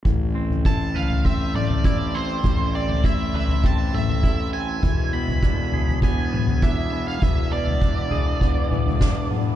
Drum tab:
SD |----------------|----------------|----------------|------------o---|
T2 |----------o-----|----------o-----|----------o-----|----------oo--o-|
FT |o--o--ooo--o----|o--o--ooo--o----|o--o--ooo--o----|o--o--o-o-oo----|
BD |o---o---o---o---|o---o---o---o---|o---o---o---o---|o---o---o---o---|